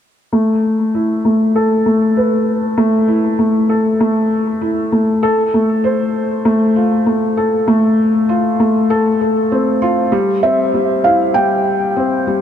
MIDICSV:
0, 0, Header, 1, 3, 480
1, 0, Start_track
1, 0, Tempo, 612245
1, 260, Time_signature, 4, 2, 24, 8
1, 9733, End_track
2, 0, Start_track
2, 0, Title_t, "Felt piano"
2, 0, Program_c, 0, 0
2, 8176, Note_on_c, 0, 76, 93
2, 8657, Note_on_c, 0, 77, 85
2, 8673, Note_off_c, 0, 76, 0
2, 8892, Note_on_c, 0, 79, 85
2, 8905, Note_off_c, 0, 77, 0
2, 9733, Note_off_c, 0, 79, 0
2, 9733, End_track
3, 0, Start_track
3, 0, Title_t, "Felt piano"
3, 0, Program_c, 1, 0
3, 256, Note_on_c, 1, 57, 74
3, 393, Control_c, 1, 64, 127
3, 486, Note_off_c, 1, 57, 0
3, 739, Note_on_c, 1, 64, 61
3, 968, Note_off_c, 1, 64, 0
3, 979, Note_on_c, 1, 57, 60
3, 1208, Note_off_c, 1, 57, 0
3, 1219, Note_on_c, 1, 69, 75
3, 1356, Note_off_c, 1, 69, 0
3, 1458, Note_on_c, 1, 57, 57
3, 1687, Note_off_c, 1, 57, 0
3, 1699, Note_on_c, 1, 71, 56
3, 1836, Note_off_c, 1, 71, 0
3, 2176, Note_on_c, 1, 57, 83
3, 2315, Note_off_c, 1, 57, 0
3, 2415, Note_on_c, 1, 64, 60
3, 2554, Note_off_c, 1, 64, 0
3, 2656, Note_on_c, 1, 57, 61
3, 2795, Note_off_c, 1, 57, 0
3, 2895, Note_on_c, 1, 69, 62
3, 3034, Note_off_c, 1, 69, 0
3, 3140, Note_on_c, 1, 57, 82
3, 3368, Note_off_c, 1, 57, 0
3, 3617, Note_on_c, 1, 64, 59
3, 3846, Note_off_c, 1, 64, 0
3, 3859, Note_on_c, 1, 57, 65
3, 4087, Note_off_c, 1, 57, 0
3, 4098, Note_on_c, 1, 69, 87
3, 4110, Control_c, 1, 64, 0
3, 4236, Note_off_c, 1, 69, 0
3, 4267, Control_c, 1, 64, 127
3, 4342, Note_on_c, 1, 57, 58
3, 4569, Note_off_c, 1, 57, 0
3, 4578, Note_on_c, 1, 72, 64
3, 4716, Note_off_c, 1, 72, 0
3, 5058, Note_on_c, 1, 57, 83
3, 5196, Note_off_c, 1, 57, 0
3, 5299, Note_on_c, 1, 65, 55
3, 5436, Note_off_c, 1, 65, 0
3, 5538, Note_on_c, 1, 57, 57
3, 5676, Note_off_c, 1, 57, 0
3, 5779, Note_on_c, 1, 69, 64
3, 5916, Note_off_c, 1, 69, 0
3, 6017, Note_on_c, 1, 57, 82
3, 6247, Note_off_c, 1, 57, 0
3, 6499, Note_on_c, 1, 65, 63
3, 6728, Note_off_c, 1, 65, 0
3, 6740, Note_on_c, 1, 57, 65
3, 6968, Note_off_c, 1, 57, 0
3, 6978, Note_on_c, 1, 69, 81
3, 7116, Note_off_c, 1, 69, 0
3, 7222, Note_on_c, 1, 69, 51
3, 7358, Note_off_c, 1, 69, 0
3, 7461, Note_on_c, 1, 60, 61
3, 7689, Note_off_c, 1, 60, 0
3, 7697, Note_on_c, 1, 65, 81
3, 7926, Note_off_c, 1, 65, 0
3, 7933, Note_on_c, 1, 55, 86
3, 7948, Control_c, 1, 64, 0
3, 8073, Note_off_c, 1, 55, 0
3, 8082, Control_c, 1, 64, 127
3, 8178, Note_on_c, 1, 60, 62
3, 8316, Note_off_c, 1, 60, 0
3, 8419, Note_on_c, 1, 55, 64
3, 8556, Note_off_c, 1, 55, 0
3, 8658, Note_on_c, 1, 64, 66
3, 8796, Note_off_c, 1, 64, 0
3, 8901, Note_on_c, 1, 55, 78
3, 9129, Note_off_c, 1, 55, 0
3, 9380, Note_on_c, 1, 60, 63
3, 9608, Note_off_c, 1, 60, 0
3, 9621, Note_on_c, 1, 55, 63
3, 9733, Note_off_c, 1, 55, 0
3, 9733, End_track
0, 0, End_of_file